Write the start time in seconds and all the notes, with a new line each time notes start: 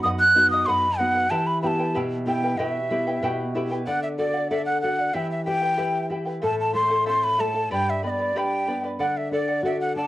Already playing: B3 D#4 F#4
0.03 F#2 B4 D#5 F#5 D#6
0.20 F#6
0.35 B3 D#4 F#4 B4 D#5 F#5
0.51 D#5 F#5 D#6
0.66 F#2 B4 D#5 F#5 B5 C6
0.98 B3 D#4 F#4 B4 D#5 F#5
1.15 D#5 F#5
1.30 E3 E4 G4 B4 E5 G5 A5
1.47 B5
1.62 B3 E4 G4 B4 E5 G5 B5
1.67 A5
1.79 E4 B4 G5
1.95 B2 E4 G4 B4 E5 G5
2.27 B3 E4 G4 B4 E5 G5
2.43 E4 B4 G5
2.57 B2 E4 G4 B4 E5 G5
2.90 B3 E4 G4 B4 E5 G5
3.07 E4 B4 G5
3.22 B2 E4 G4 B4 E5 G5
3.54 B3 E4 G4 B4 E5 G5
3.71 E4 B4 G5
3.87 D3 A4 D5 F#5
4.03 E5
4.18 F#4 A4 D5 F#5
4.34 D5 F#5
4.50 A4 D5 E5 F#5
4.65 F#5
4.81 F#4 A4 D5 F#5
4.98 D5 F#5
5.14 E3 E4 G4 B4 E5 G5
5.31 E5
5.45 E4 G4 B4 E5 G5
5.62 E4 B4 G5
5.77 E4 G4 B4 E5 G5
6.10 E4 G4 B4 E5 G5
6.25 E4 B4 G5
6.42 A2 E4 A4 C5 E5 A5
6.60 A5
6.73 A3 E4 A4 E5 A5 C6
6.90 E4 A4 A5
7.06 C4 E4 A4 C5 E5 A5 C6
7.24 B5
7.38 A3 E4 A4 E5 A5
7.54 E4 A4 A5
7.71 G2 G4 B4 D5 G5 B5
7.90 E5
8.02 B3 B4 D5 D#5 G5 B5
8.10 D5
8.19 B4 D5 B5
8.35 D4 G4 B4 D5 G5 B5
8.67 B3 B4 D5 G5 B5
8.83 B4 D5 B5
8.99 D3 A4 D5 F#5
9.17 E5
9.31 D4 A4 D5 F#5
9.48 D5 F#5
9.63 F#4 A4 D5 E5 F#5
9.80 F#5
9.96 D4 A4 D5 F#5 A5